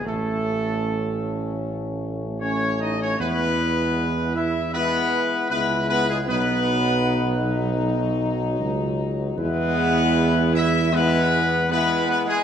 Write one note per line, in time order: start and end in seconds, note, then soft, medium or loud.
0.03 3.15 A1 medium
0.03 1.96 A3 loud
0.03 2.40 A3 medium
0.03 2.40 C#4 medium
0.03 1.97 A4 loud
2.40 3.15 A3 medium
2.40 3.15 C#4 medium
2.40 2.77 C#4 loud
2.40 2.77 C#5 loud
2.80 2.98 D#4 loud
2.80 3.00 D#5 loud
3.00 3.19 C#4 medium
3.00 3.18 C#5 loud
3.19 5.20 E2 medium
3.19 4.57 G#3 loud
3.19 4.31 B3 loud
3.19 4.57 E4 medium
3.19 4.31 B4 loud
4.34 4.70 E4 loud
4.34 4.73 E5 loud
4.72 5.47 G#3 medium
4.72 5.47 B3 loud
4.72 5.47 E4 loud
4.72 5.46 B4 loud
5.49 6.29 C#2 medium
5.49 6.23 G#3 medium
5.49 5.86 B3 loud
5.49 6.24 E4 medium
5.49 5.85 B4 loud
5.88 6.06 B3 loud
5.88 6.07 B4 loud
6.08 6.17 G#3 medium
6.08 6.17 G#4 loud
6.26 8.59 B1 loud
6.26 9.38 F#3 loud
6.26 8.17 B3 loud
6.26 9.39 D#4 loud
6.26 8.18 B4 loud
8.60 9.34 C#2 loud
9.36 12.16 E2 loud
9.36 10.89 G#3 loud
9.36 10.49 B3 loud
9.36 10.91 E4 loud
9.36 10.50 B4 loud
10.53 10.90 E4 loud
10.53 10.91 E5 loud
10.92 11.54 G#3 loud
10.92 11.66 B3 loud
10.92 11.54 E4 loud
10.92 11.70 B4 loud
11.69 12.44 G#3 loud
11.69 12.05 B3 loud
11.69 12.44 E4 loud
11.69 12.07 B4 loud
12.07 12.26 B3 loud
12.07 12.19 B4 loud
12.27 12.44 G#3 loud
12.27 12.44 G#4 loud